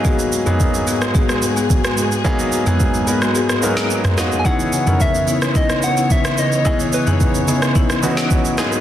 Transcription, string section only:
X:1
M:4/4
L:1/8
Q:1/4=109
K:C#dor
V:1 name="String section"
[G,,G,FG]8- | [G,,G,FG]8 | [C,E,B,c]8- | [C,E,B,c]6- [C,E,B,c] [G,,G,FG] |]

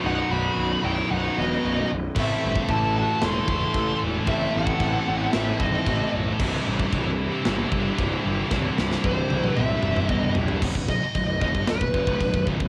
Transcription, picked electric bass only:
X:1
M:4/4
L:1/16
Q:1/4=113
K:none
V:1 name="Picked electric bass" clef=bass
B,,,,2 B,,,,2 B,,,,2 B,,,,2 B,,,,2 E,,,2 B,,,,2 B,,,,2 | A,,,2 G,,,2 A,,,4 E,,,2 E,,,2 A,,,2 E,,,2 | A,,,2 A,,,2 A,,,2 A,,,2 A,,,2 ^D,,,2 A,,,2 B,,,,2 | C,,,2 A,,,2 C,,,4 G,,,2 G,,,2 C,,,2 G,,,2 |
C,,,2 C,,,2 C,,,2 C,,,2 C,,,2 E,,,2 C,,,2 ^A,,,2 | B,,,, B,,,, B,,,, z B,,,,2 E,,, G,,, B,,,, B,,,, ^F,,, C,,, B,,,, B,,,, B,,,, B,,,, |]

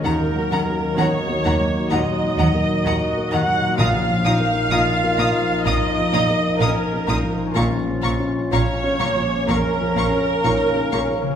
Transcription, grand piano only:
X:1
M:4/4
L:1/8
Q:1/4=63
K:Bbphr
V:1 name="Grand piano" clef=bass
(3E,, G, B, (3E B, G, (3B,, G, B, (3E B, G, | (3B,,, F, B, (3E B, F, (3F,, F, B, (3E B, F, | (3B,,, F, D (3F D F, (3F,, F, D (3F D F, |]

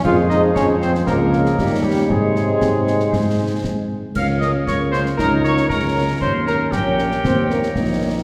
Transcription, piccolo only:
X:1
M:2/4
L:1/8
Q:1/4=117
K:Bbdor
V:1 name="Piccolo"
z4 | z4 | z4 | z4 |
f' e' d' c' | b d' b2 | c' b g2- | g3 z |]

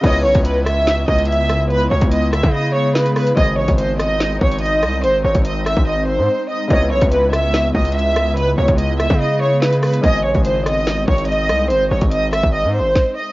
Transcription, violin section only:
X:1
M:4/4
L:1/8
Q:1/4=144
K:C#m
V:1 name="Violin section"
d c B e2 d e2 | B c d e d c B B | d c ^B d2 c d2 | ^B c d e d B2 d |
d c B e2 d e2 | B c d e d c B B | d c ^B d2 c d2 | ^B c d e d B2 d |]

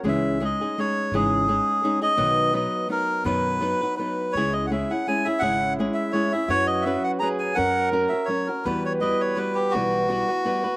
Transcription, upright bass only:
X:1
M:3/4
L:1/8
Q:"Swing" 1/4=167
K:C#dor
V:1 name="Upright bass" clef=bass
C,,4 z2 | G,,,4 z2 | B,,,4 z2 | F,,4 z2 |
C,,4 z2 | G,,,4 z2 | F,,4 z2 | F,,4 z2 |
E,,4 z2 | B,,,4 z2 |]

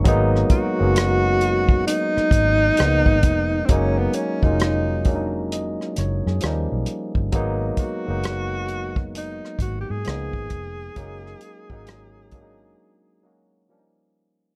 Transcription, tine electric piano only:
X:1
M:4/4
L:1/16
Q:"Swing 16ths" 1/4=66
K:G#dor
V:1 name="Tine electric piano"
z16 | z8 d2 c G2 z3 | z16 | z16 |]
V:2 name="Tine electric piano"
[F,G,A,B,D]2 z [F,G,A,B,C]6- [F,G,A,B,C] z2 [E,G,A,B,D]3 z | [F,G,A,CD]2 z [F,G,A,CE]2 z [F,G,A,C=D^D]3 z3 [E,=G,A,CD]3 z | [F,G,A,B,D]2 z [F,G,A,B,D]6- [F,G,A,B,D] z2 [E,G,A,B,D]3 z | [F,G,A,CD]2 z [F,G,A,CD]2 z [F,G,A,C=D^D]3 z [F,G,A,CF]2 [E,=G,A,C=D^D]3 z |]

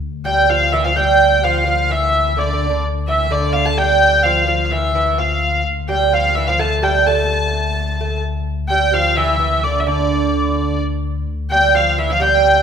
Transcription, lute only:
X:1
M:3/4
L:1/16
Q:1/4=128
K:Dm
V:1 name="Lute" clef=bass
z2 G,2 F,2 E, F, G,4 | F,2 F,2 E,4 (3D,2 D,2 D,2 | z2 E,2 D,3 A, G,4 | F,2 F,2 E,2 E,2 F,4 |
z2 G,2 F,2 E, F, A,2 G,2 | A,8 A,2 z2 | z2 G,2 F,2 E,2 E,2 D,2 | D,8 z4 |
z2 G,2 F,2 E, F, G,4 |]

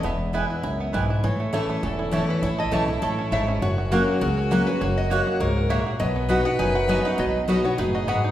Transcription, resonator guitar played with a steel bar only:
X:1
M:4/4
L:1/16
Q:"Swing" 1/4=202
K:Alyd
V:1 name="Resonator guitar played with a steel bar"
e12- e2 z2 | c4 A4 A4 z2 B2 | c2 d6 c4 e3 z | c4 ^A4 A4 z2 B2 |
c2 d6 c4 e3 z | d4 f2 f2 g2 f2 g2 f2 | d6 c2 B2 d2 f3 z |]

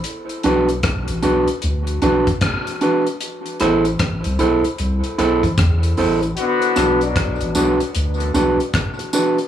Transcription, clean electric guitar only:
X:1
M:4/4
L:1/16
Q:"Swing 16ths" 1/4=76
K:Bphr
V:1 name="Clean electric guitar"
z2 [DFB] z3 [DFB] z3 [DFB] z3 [DFB] z | z2 [EAc] z3 [EAc] z3 [EAc] z3 [EAc] z | z2 [DFB] z3 [DFB] z3 [DFB] z3 [DFB] z |]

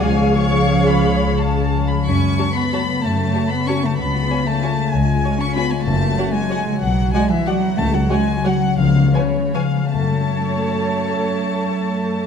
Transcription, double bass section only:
X:1
M:3/4
L:1/8
Q:1/4=182
K:F#m
V:1 name="Double bass section" clef=bass
C,,6- | C,,4- C,, z | F,,2 z4 | F,,2 z4 |
C,,2 z4 | C,,2 z4 | F,,,2 z4 | B,,,2 z4 |
C,,2 z4 | C,,2 z4 | F,,6- | F,,6 |]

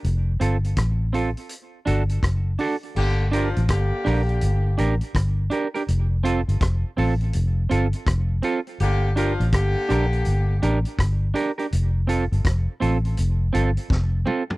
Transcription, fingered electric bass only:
X:1
M:4/4
L:1/16
Q:"Swing 16ths" 1/4=82
K:Gm
V:1 name="Fingered electric bass" clef=bass
F,,,2 G,,,2 A,,,3 z3 G,,,2 ^F,,,2 z2 | G,,,3 A,,, G,,, z B,,,2 G,,,2 A,,, z G,,,2 z2 | F,,,3 G,,, F,,, z A,,,2 F,,,2 G,,, z F,,,2 z2 | G,,,3 A,,, G,,, z B,,,2 G,,,2 A,,, z G,,,2 z2 |
F,,,3 G,,, F,,, z A,,,2 F,,,2 G,,, z F,,,2 z2 |]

